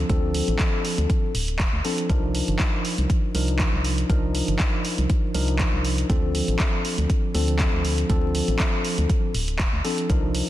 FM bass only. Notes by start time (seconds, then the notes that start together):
0.10 D2
0.48 A1
0.98 D2
1.35 D1
1.73 D2
2.10 C2
2.48 G1
2.98 C2
3.34 C2
3.73 C2
4.10 C2
4.48 G1
4.98 C2
5.35 C2
5.73 C2
6.10 D2
6.48 A1
6.98 D2
7.35 D2
7.73 D2
8.10 D2
8.48 A1
8.98 D2
9.35 D1
9.73 D2
10.10 C2